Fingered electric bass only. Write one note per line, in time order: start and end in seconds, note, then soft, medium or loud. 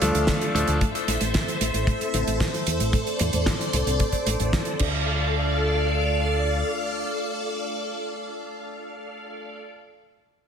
0.02 0.13 D2 medium
0.15 0.27 D2 medium
0.55 0.67 D2 medium
0.68 0.80 D2 medium
1.08 1.20 A1 medium
1.21 1.33 A1 medium
1.61 1.73 A1 medium
1.74 1.86 A1 medium
2.14 2.26 A1 medium
2.27 2.39 A1 medium
2.67 2.79 E2 medium
2.80 2.92 A1 medium
3.20 3.32 E2 medium
3.34 3.45 E2 medium
3.73 3.85 C2 medium
3.87 3.98 C2 medium
4.26 4.38 A1 medium
4.40 4.52 A1 medium
4.80 6.62 D2 medium